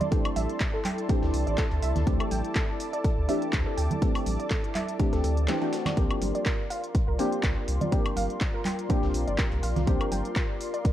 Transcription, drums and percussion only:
0.01 closed hi-hat, high conga, low conga
0.12 kick, closed hi-hat
0.25 closed hi-hat, high woodblock
0.36 closed hi-hat, open hi-hat, high conga
0.49 closed hi-hat
0.60 kick, snare, clap, closed hi-hat
0.85 clap, closed hi-hat, open hi-hat, high conga
0.98 closed hi-hat
1.09 kick, closed hi-hat
1.23 snare
1.34 closed hi-hat, open hi-hat
1.47 closed hi-hat
1.58 kick, snare, clap, closed hi-hat
1.71 closed hi-hat
1.82 closed hi-hat, open hi-hat
1.96 snare, closed hi-hat, low conga
2.07 kick, closed hi-hat
2.20 closed hi-hat, high woodblock
2.31 closed hi-hat, open hi-hat, high conga
2.45 closed hi-hat
2.55 kick, snare, clap, closed hi-hat
2.80 closed hi-hat, open hi-hat
2.93 closed hi-hat
3.04 kick, closed hi-hat
3.29 closed hi-hat, open hi-hat
3.42 closed hi-hat
3.53 kick, snare, clap, closed hi-hat
3.78 closed hi-hat, open hi-hat
3.91 closed hi-hat, high conga, low conga
4.02 kick, closed hi-hat
4.15 closed hi-hat, open hi-hat, high woodblock
4.26 closed hi-hat, open hi-hat, high conga
4.40 closed hi-hat
4.50 kick, snare, clap, closed hi-hat
4.64 closed hi-hat
4.75 clap, closed hi-hat, open hi-hat, high conga
4.89 closed hi-hat
5.00 kick, closed hi-hat
5.13 snare, closed hi-hat
5.24 closed hi-hat, open hi-hat
5.37 closed hi-hat
5.48 snare, clap, closed hi-hat
5.62 closed hi-hat
5.73 snare, closed hi-hat, open hi-hat
5.86 snare, closed hi-hat, low conga, high woodblock
5.97 kick, closed hi-hat
6.11 closed hi-hat, high woodblock
6.22 closed hi-hat, open hi-hat, high conga
6.35 closed hi-hat
6.46 kick, snare, clap, closed hi-hat
6.70 closed hi-hat, open hi-hat
6.84 closed hi-hat
6.95 kick, closed hi-hat
7.19 closed hi-hat, open hi-hat
7.32 closed hi-hat
7.43 kick, snare, clap, closed hi-hat
7.68 closed hi-hat, open hi-hat
7.81 closed hi-hat, high conga, low conga
7.92 kick, closed hi-hat
8.05 closed hi-hat, high woodblock
8.16 closed hi-hat, open hi-hat, high conga
8.30 closed hi-hat
8.41 kick, snare, clap, closed hi-hat
8.65 clap, closed hi-hat, open hi-hat, high conga
8.79 closed hi-hat
8.90 kick, closed hi-hat
9.03 snare
9.14 closed hi-hat, open hi-hat
9.28 closed hi-hat
9.38 kick, snare, clap, closed hi-hat
9.52 closed hi-hat
9.63 closed hi-hat, open hi-hat
9.76 snare, closed hi-hat, low conga
9.87 kick, closed hi-hat
10.01 closed hi-hat, high woodblock
10.12 closed hi-hat, open hi-hat, high conga
10.25 closed hi-hat
10.36 kick, snare, clap, closed hi-hat
10.61 closed hi-hat, open hi-hat
10.74 closed hi-hat
10.85 kick, closed hi-hat

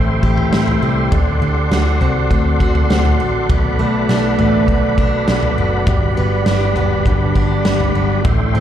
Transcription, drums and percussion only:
0.23 kick
0.38 floor tom
0.53 snare
0.68 floor tom
1.12 kick, floor tom
1.72 snare
2.01 floor tom
2.31 kick, floor tom
2.60 kick
2.75 floor tom
2.90 snare
3.05 floor tom
3.50 kick, floor tom
4.09 snare
4.39 floor tom
4.68 kick, floor tom
4.98 kick
5.28 snare
5.43 floor tom
5.87 kick, floor tom
6.46 snare
6.76 floor tom
7.06 kick, floor tom
7.36 kick
7.65 snare
7.80 floor tom
8.25 kick, floor tom

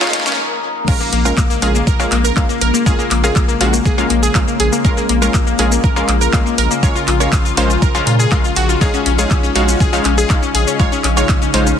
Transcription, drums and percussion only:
0.01 snare, shaker
0.07 snare
0.13 snare, open hi-hat
0.20 snare
0.26 snare, high conga, shaker
0.32 snare
0.88 kick, crash, shaker
1.01 shaker
1.13 open hi-hat
1.26 shaker
1.37 kick, clap, shaker
1.50 shaker
1.62 open hi-hat
1.75 shaker
1.87 kick, shaker
2.00 shaker
2.12 clap, open hi-hat
2.25 shaker
2.37 kick, clap, shaker
2.50 shaker
2.61 open hi-hat
2.74 shaker
2.86 kick, shaker
2.99 shaker
3.11 clap, open hi-hat
3.24 shaker
3.36 kick, clap, shaker
3.49 shaker
3.61 open hi-hat
3.74 shaker
3.85 kick, shaker
3.98 shaker
4.10 open hi-hat
4.23 shaker
4.35 kick, clap, shaker
4.48 shaker
4.60 open hi-hat
4.73 shaker
4.85 kick, shaker
4.98 shaker
5.09 open hi-hat
5.22 shaker
5.34 kick, clap, shaker
5.47 shaker
5.59 open hi-hat
5.72 shaker
5.84 kick, shaker
5.97 shaker
6.08 clap, open hi-hat
6.22 shaker
6.33 kick, clap, shaker
6.46 shaker
6.58 open hi-hat
6.71 shaker
6.83 kick, shaker
6.96 shaker
7.08 clap, open hi-hat
7.21 shaker
7.32 kick, clap, shaker
7.46 shaker
7.57 open hi-hat
7.70 shaker
7.82 kick, shaker
7.95 shaker
8.07 open hi-hat
8.20 shaker
8.32 kick, clap, shaker
8.45 shaker
8.56 open hi-hat
8.69 shaker
8.81 kick, shaker
8.94 shaker
9.06 open hi-hat
9.19 shaker
9.31 kick, clap, shaker
9.44 shaker
9.56 open hi-hat
9.69 shaker
9.80 kick, shaker
9.93 shaker
10.05 clap, open hi-hat
10.18 shaker
10.30 kick, clap, shaker
10.43 shaker
10.55 open hi-hat
10.68 shaker
10.80 kick, shaker
10.92 shaker
11.04 clap, open hi-hat
11.17 shaker
11.29 kick, clap, shaker
11.42 shaker
11.54 open hi-hat
11.67 shaker

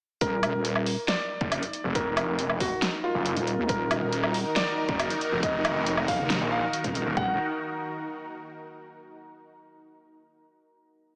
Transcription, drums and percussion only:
0.21 kick, closed hi-hat
0.43 closed hi-hat, low woodblock
0.65 closed hi-hat
0.76 low woodblock
0.86 open hi-hat
1.08 snare, closed hi-hat
1.41 kick
1.52 closed hi-hat, low woodblock
1.63 closed hi-hat
1.73 closed hi-hat
1.95 kick, closed hi-hat
2.17 closed hi-hat, low woodblock
2.39 closed hi-hat
2.50 low woodblock
2.60 kick, open hi-hat
2.82 snare, closed hi-hat
3.26 closed hi-hat
3.37 closed hi-hat
3.47 closed hi-hat
3.69 kick, closed hi-hat
3.91 closed hi-hat, low woodblock
4.13 closed hi-hat
4.23 low woodblock
4.34 open hi-hat
4.56 snare, closed hi-hat
4.89 kick
5.00 closed hi-hat, low woodblock
5.10 closed hi-hat
5.21 closed hi-hat
5.43 kick, closed hi-hat
5.65 closed hi-hat, low woodblock
5.87 closed hi-hat
5.97 low woodblock
6.08 kick, open hi-hat
6.30 snare, closed hi-hat
6.73 closed hi-hat
6.84 kick, closed hi-hat
6.95 closed hi-hat
7.17 kick

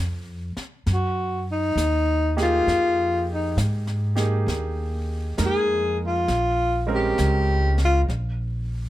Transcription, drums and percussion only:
0.57 snare
0.87 brush sweep, snare
1.77 snare, hi-hat pedal
2.38 snare
2.68 brush sweep, snare
3.58 snare, hi-hat pedal
3.87 snare
4.16 snare
4.48 brush sweep, snare
5.38 snare, hi-hat pedal
6.28 brush sweep, snare
7.18 snare, hi-hat pedal
7.78 snare
8.09 brush sweep, snare

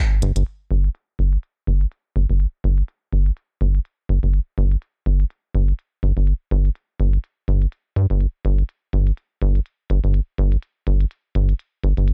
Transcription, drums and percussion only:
0.22 closed hi-hat
0.36 closed hi-hat
0.46 closed hi-hat
0.71 closed hi-hat
0.84 closed hi-hat
0.95 closed hi-hat
1.19 closed hi-hat
1.33 closed hi-hat
1.43 closed hi-hat
1.67 closed hi-hat
1.81 closed hi-hat
1.92 closed hi-hat
2.16 closed hi-hat
2.30 closed hi-hat
2.40 closed hi-hat
2.64 closed hi-hat
2.78 closed hi-hat
2.88 closed hi-hat
3.12 closed hi-hat
3.26 closed hi-hat
3.37 closed hi-hat
3.61 closed hi-hat
3.75 closed hi-hat
3.85 closed hi-hat
4.09 closed hi-hat
4.23 closed hi-hat
4.34 closed hi-hat
4.58 closed hi-hat
4.72 closed hi-hat
4.82 closed hi-hat
5.06 closed hi-hat
5.20 closed hi-hat
5.30 closed hi-hat
5.55 closed hi-hat
5.68 closed hi-hat
5.79 closed hi-hat
6.03 closed hi-hat
6.17 closed hi-hat
6.27 closed hi-hat
6.51 closed hi-hat
6.65 closed hi-hat
6.75 closed hi-hat
7.00 closed hi-hat
7.13 closed hi-hat
7.24 closed hi-hat
7.48 closed hi-hat
7.62 closed hi-hat
7.72 closed hi-hat
7.96 closed hi-hat
8.10 closed hi-hat
8.21 closed hi-hat
8.45 closed hi-hat
8.59 closed hi-hat
8.69 closed hi-hat
8.93 closed hi-hat
9.07 closed hi-hat
9.17 closed hi-hat
9.42 closed hi-hat
9.55 closed hi-hat
9.66 closed hi-hat
9.90 closed hi-hat
10.04 closed hi-hat
10.14 closed hi-hat
10.38 closed hi-hat
10.52 closed hi-hat
10.63 closed hi-hat
10.87 closed hi-hat
11.01 closed hi-hat
11.11 closed hi-hat
11.35 closed hi-hat
11.49 closed hi-hat
11.59 closed hi-hat
11.84 closed hi-hat
11.97 closed hi-hat
12.08 closed hi-hat

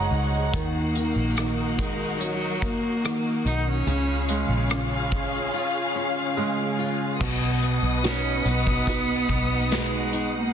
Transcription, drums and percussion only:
0.53 kick, closed hi-hat
0.95 closed hi-hat
1.37 cross-stick, closed hi-hat
1.79 kick, closed hi-hat
2.21 closed hi-hat
2.62 kick, closed hi-hat
3.05 cross-stick, closed hi-hat
3.46 closed hi-hat
3.87 closed hi-hat
4.29 closed hi-hat
4.70 cross-stick, closed hi-hat
5.12 kick, closed hi-hat
7.21 kick, crash
7.63 closed hi-hat
8.04 snare, closed hi-hat
8.46 closed hi-hat
8.67 kick
8.87 kick, closed hi-hat
9.29 kick, closed hi-hat
9.71 snare, closed hi-hat
10.13 closed hi-hat

